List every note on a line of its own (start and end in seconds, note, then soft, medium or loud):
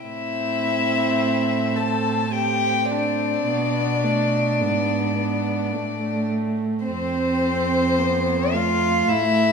0.02 3.43 A2 soft
0.02 2.29 C4 medium
0.02 1.78 E4 medium
0.02 1.78 E5 medium
1.76 2.33 A4 soft
1.76 2.35 A5 medium
2.33 3.49 C4 soft
2.33 2.93 G4 medium
2.33 2.90 G5 medium
2.91 6.30 D4 medium
2.91 6.25 D5 medium
3.47 4.62 B2 medium
3.47 4.05 B3 medium
4.04 4.62 A3 soft
4.61 5.75 G#2 soft
4.61 5.16 B3 soft
5.17 5.74 B3 soft
5.72 6.88 A2 medium
5.72 6.85 A3 medium
6.86 9.09 F2 medium
6.86 8.56 C4 medium
6.86 8.00 C4 medium
6.86 8.55 C5 medium
7.99 8.55 B3 medium
8.53 9.52 A3 medium
8.53 9.11 F4 medium
8.53 9.10 F5 medium
9.09 9.52 A2 medium
9.09 9.52 E4 medium
9.09 9.52 E5 medium